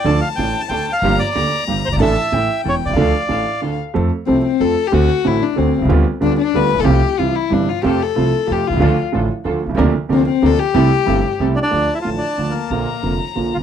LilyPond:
<<
  \new Staff \with { instrumentName = "Bandoneon" } { \time 3/4 \key d \minor \tempo 4 = 185 d''8 f''8 g''8. a''16 g''8. f''16~ | f''8 d''4. r8 c''16 d''16 | e''2 cis''8 d''8~ | d''2 r4 |
\key f \major r2. | r2. | r2. | r2. |
r2. | r2. | r2. | r2 r8 d'16 d'16~ |
\key d \minor d'8. e'16 f'8 d'4 bes8~ | bes4. r4 f'16 r16 | }
  \new Staff \with { instrumentName = "Violin" } { \time 3/4 \key d \minor a''2. | bes''4 bes''2 | a''4 g''2 | f''4 f''4. r8 |
\key f \major r4 c'8 c'8 a'8. g'16 | fis'4 e'8 d'8 c'8. r16 | r4 d'8 d'8 b'8. a'16 | g'4 f'8 e'8 d'8 f'8 |
g'8 a'4. g'8 f'8~ | f'8 r2 r8 | r4 c'8 c'8 a'8 g'8~ | g'2 r4 |
\key d \minor a''2. | bes''2. | }
  \new Staff \with { instrumentName = "String section" } { \time 3/4 \key d \minor <d' f' a'>8 r8 <d' f' a'>8 r8 <d' f' a'>8 r8 | <bes f' g'>8 r8 <bes f' g'>8 r8 <bes f' g'>8 r8 | <d' e' a'>8 r8 <cis' e' a'>8 r8 <cis' e' a'>8 r8 | <d' f' a'>8 r8 <d' f' a'>8 r8 <d' f' a'>8 r8 |
\key f \major r2. | r2. | r2. | r2. |
<c' f' a'>8 r8 <c' f' a'>8 r8 <c' f' a'>8 r8 | <d' f' a'>8 r8 <d' f' a'>8 r8 <d' f' a'>8 r8 | <c' d' bes'>8 r8 <c' d' bes'>8 r8 <c' d' bes'>8 r8 | <c' e' a'>8 r8 <c' e' a'>8 r8 <c' e' a'>8 r8 |
\key d \minor r2. | r2. | }
  \new Staff \with { instrumentName = "Grand piano" } { \clef bass \time 3/4 \key d \minor <d, d f a d' a'>8 r8 <a,, a,>8 r8 <d, d>8 r8 | <g,, g, f bes d' g'>8 r8 <d, d>8 r8 <g,, g,>8 r32 fis,,32 g,,32 gis,,32 | <a,, a, e a d' a'>8 r8 <a,, a,>8 r8 <e,, e,>8 r32 b,,32 c,32 cis,32 | <d, d f a d' a'>8 r8 <a,, a,>8 r8 <d, d>8 r8 |
\key f \major <f, f a c' a'>8 r8 <c, c f a c' a'>8 r8 <f, f a c' a'>8 r8 | <d, d a c' fis'>8 r8 <a,, a, d a c' fis'>8 r8 <d, d a c' fis'>8 r32 b,,32 c,32 des,32 | <d, d g b f'>8 r8 <d, d g b f'>8 r8 <d, d g b f'>8 r32 a,,32 bes,,32 b,,32 | <c, c f a f'>8 r8 <c, c e g e'>8 r8 <g,, g, c e g e'>8 r8 |
<f, c f a f'>8 r8 <c, c f a f'>8 r8 <f, c f a f'>8 r32 b,,32 c,32 des,32 | <d, d f a f'>8 r8 <a,, a, d f a f'>8 r8 <d, d f a f'>8 r32 b,,32 c,32 des,32 | <d, c d f bes d'>8 r8 <d, c d f bes d'>8 r8 <d, c d f bes d'>8 r8 | <c, c g a e'>8 r8 <g,, g, c g a e'>8 r8 <c, c g a e'>8 r8 |
\key d \minor <d, d f a f'>8 r8 <a,, a, d f a f'>8 r8 <d, d f a f'>8 r8 | <bes,, bes, d f bes f'>8 r8 <f,, f, d f bes f'>8 r8 <bes,, bes, d f bes f'>8 r32 e,32 r16 | }
  \new Staff \with { instrumentName = "Upright bass" } { \clef bass \time 3/4 \key d \minor d,16. r8 r32 a,,16. r8 r32 d,16. r8 r32 | g,,16. r8 r32 d,16. r8 r32 g,,16. r16 fis,,32 g,,32 gis,,32 | a,,16. r8 r32 a,,16. r8 r32 e,,16. r16 b,,32 c,32 cis,32 | d,16. r8 r32 a,,16. r4. r32 |
\key f \major f,16. r8 r32 c,16. r8 r32 f,16. r8 r32 | d,16. r8 r32 a,,16. r8 r32 d,16. r16 b,,32 c,32 des,32 | d,16. r8 r32 d,16. r8 r32 d,16. r16 a,,32 bes,,32 b,,32 | c,16. r8 r32 c,16. r8 r32 g,,16. r8 r32 |
f,16. r8 r32 c,16. r8 r32 f,16. r16 b,,32 c,32 des,32 | d,16. r8 r32 a,,16. r8 r32 d,16. r16 b,,32 c,32 des,32 | d,16. r8 r32 d,16. r8 r32 d,16. r8 r32 | c,16. r8 r32 g,,16. r8 r32 c,16. r8 r32 |
\key d \minor d,16. r8 r32 a,,16. r8 r32 d,16. r8 r32 | bes,,16. r8 r32 f,,16. r8 r32 bes,,16. r16 e,,32 r16 | }
>>